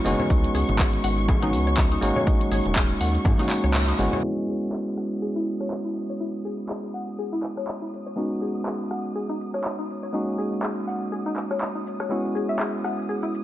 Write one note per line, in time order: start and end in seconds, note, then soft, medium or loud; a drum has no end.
0.00 4.25 C#6 medium
0.04 0.15 F#1 loud
0.04 1.39 G#3 medium
0.04 1.39 B3 medium
0.04 1.39 C#4 medium
0.04 1.39 D#4 medium
0.04 1.40 F#4 loud
0.04 open hi-hat loud
0.04 high conga medium
0.19 0.26 C#5 medium
0.19 high conga medium
0.19 low conga medium
0.30 0.47 C#2 loud
0.30 0.38 D#4 medium
0.30 kick loud
0.30 closed hi-hat medium
0.44 closed hi-hat medium
0.55 0.64 C#2 medium
0.55 0.63 G#4 medium
0.55 open hi-hat loud
0.69 0.98 G#1 loud
0.69 closed hi-hat soft
0.69 high conga medium
0.79 0.88 G#4 medium
0.79 kick loud
0.79 clap loud
0.79 closed hi-hat medium
0.93 closed hi-hat medium
1.04 1.55 G#1 loud
1.04 1.09 F#5 medium
1.04 open hi-hat loud
1.29 1.41 G#4 medium
1.29 kick loud
1.29 closed hi-hat medium
1.29 low conga medium
1.41 1.99 G#3 medium
1.41 1.99 B3 medium
1.41 2.00 C#4 medium
1.41 1.49 D#4 loud
1.41 2.00 D#4 medium
1.41 2.00 F#4 medium
1.41 closed hi-hat medium
1.41 high conga medium
1.53 1.96 C#2 medium
1.53 open hi-hat medium
1.67 1.77 C#5 medium
1.67 closed hi-hat soft
1.77 kick loud
1.77 clap loud
1.77 closed hi-hat medium
1.77 high conga medium
1.77 low conga medium
1.92 2.01 D#4 medium
1.92 closed hi-hat medium
2.01 2.11 G#1 loud
2.01 3.35 G#3 medium
2.01 3.36 A#3 medium
2.01 3.36 C#4 medium
2.01 3.36 D#4 medium
2.01 3.37 F#4 loud
2.01 open hi-hat loud
2.16 2.23 C#5 medium
2.16 high conga medium
2.16 low conga medium
2.27 2.35 D#4 medium
2.27 kick loud
2.27 closed hi-hat medium
2.41 closed hi-hat medium
2.51 2.60 G#1 medium
2.51 2.60 G#4 medium
2.51 open hi-hat loud
2.65 2.95 D#1 loud
2.65 closed hi-hat soft
2.65 high conga medium
2.76 2.84 G#4 medium
2.76 kick loud
2.76 clap loud
2.76 closed hi-hat medium
2.90 closed hi-hat soft
3.01 3.18 D#2 loud
3.01 3.06 F#5 medium
3.01 open hi-hat loud
3.15 closed hi-hat soft
3.25 3.34 G#2 loud
3.25 3.38 G#4 medium
3.25 kick loud
3.25 closed hi-hat medium
3.25 low conga loud
3.38 3.96 G#3 medium
3.38 3.96 A#3 medium
3.38 3.97 C#4 medium
3.38 3.46 D#4 loud
3.38 3.97 D#4 medium
3.38 3.97 F#4 medium
3.38 open hi-hat medium
3.38 high conga medium
3.50 clap medium
3.50 open hi-hat loud
3.64 3.93 C#2 medium
3.64 3.73 C#5 medium
3.64 closed hi-hat soft
3.74 clap loud
3.74 closed hi-hat medium
3.74 low conga medium
3.88 3.98 D#4 medium
3.88 closed hi-hat medium
3.99 4.08 G#1 loud
3.99 4.21 G#3 medium
3.99 4.22 B3 medium
3.99 4.22 C#4 medium
3.99 4.23 E4 medium
3.99 4.24 F#4 loud
3.99 open hi-hat loud
3.99 high conga medium
4.13 4.19 C#5 medium
4.13 closed hi-hat soft
4.13 high conga medium
4.13 low conga medium
4.22 8.14 G#3 medium
4.22 8.14 B3 medium
4.22 8.15 C#4 medium
4.22 4.32 E4 medium
4.22 8.15 E4 medium
4.22 8.15 F#4 medium
4.22 12.09 D#6 medium
4.22 shaker soft
4.48 4.56 G#4 medium
4.48 shaker medium
4.63 shaker soft
4.72 4.81 G#4 medium
4.72 clap loud
4.97 5.02 F#5 medium
4.97 cross-stick medium
4.97 shaker medium
5.12 shaker soft
5.22 5.34 G#4 medium
5.22 shaker soft
5.36 5.42 E4 medium
5.47 shaker medium
5.61 5.70 C#5 medium
5.61 cross-stick medium
5.61 shaker soft
5.71 clap loud
5.85 5.95 E4 medium
5.85 shaker soft
5.97 shaker medium
6.10 6.16 C#5 medium
6.10 shaker soft
6.20 6.29 E4 medium
6.20 shaker soft
6.35 shaker soft
6.45 6.53 G#4 medium
6.45 shaker medium
6.60 shaker soft
6.69 6.78 G#4 medium
6.69 clap loud
6.69 shaker soft
6.94 6.99 F#5 medium
6.94 shaker medium
7.09 shaker soft
7.19 7.31 G#4 medium
7.19 shaker soft
7.33 7.39 E4 loud
7.43 clap medium
7.43 shaker medium
7.57 7.67 C#5 medium
7.57 cross-stick medium
7.57 shaker soft
7.68 clap loud
7.68 shaker soft
7.82 7.91 E4 medium
7.82 shaker soft
7.93 shaker medium
8.06 8.13 C#5 medium
8.06 shaker soft
8.16 10.11 G#3 medium
8.16 10.11 B3 medium
8.16 10.11 C#4 medium
8.16 8.25 D#4 medium
8.16 10.12 D#4 medium
8.16 10.12 F#4 medium
8.16 shaker soft
8.32 shaker soft
8.42 8.50 G#4 medium
8.42 shaker medium
8.57 shaker soft
8.66 8.74 G#4 medium
8.66 clap loud
8.66 shaker soft
8.91 8.96 F#5 medium
8.91 cross-stick medium
8.91 shaker medium
9.06 shaker soft
9.15 9.28 G#4 medium
9.15 shaker soft
9.29 9.36 D#4 loud
9.41 shaker medium
9.54 9.63 C#5 medium
9.54 cross-stick medium
9.54 shaker soft
9.64 clap loud
9.64 shaker soft
9.79 9.88 D#4 medium
9.79 shaker soft
9.90 shaker medium
10.03 10.09 C#5 medium
10.03 shaker soft
10.13 12.07 G#3 medium
10.13 12.08 A#3 medium
10.13 12.08 C#4 medium
10.13 10.22 D#4 medium
10.13 12.08 D#4 medium
10.13 12.09 F#4 medium
10.13 shaker soft
10.29 shaker soft
10.38 10.47 G#4 medium
10.38 shaker medium
10.53 shaker soft
10.63 10.71 G#4 medium
10.63 clap loud
10.63 shaker soft
10.78 shaker soft
10.87 10.92 F#5 medium
10.87 shaker medium
11.02 shaker soft
11.12 11.24 G#4 medium
11.12 shaker soft
11.26 11.32 D#4 loud
11.26 shaker soft
11.36 clap medium
11.36 shaker medium
11.51 11.60 C#5 medium
11.51 cross-stick medium
11.51 shaker soft
11.61 clap loud
11.61 shaker soft
11.75 11.85 D#4 medium
11.75 shaker soft
11.87 shaker medium
12.00 12.06 C#5 medium
12.00 cross-stick medium
12.00 shaker soft
12.09 13.44 G#3 medium
12.09 13.44 B3 medium
12.09 13.44 C#4 medium
12.09 12.19 E4 medium
12.09 13.44 E4 medium
12.09 13.44 F#4 medium
12.09 13.44 D#6 medium
12.09 shaker soft
12.25 shaker soft
12.35 12.43 G#4 medium
12.35 shaker medium
12.49 12.55 E5 loud
12.49 shaker soft
12.59 12.68 G#4 medium
12.59 clap loud
12.59 shaker soft
12.84 12.89 F#5 medium
12.84 cross-stick medium
12.84 shaker medium
12.99 shaker soft
13.09 13.21 G#4 medium
13.09 shaker soft
13.23 13.29 E4 medium
13.34 shaker medium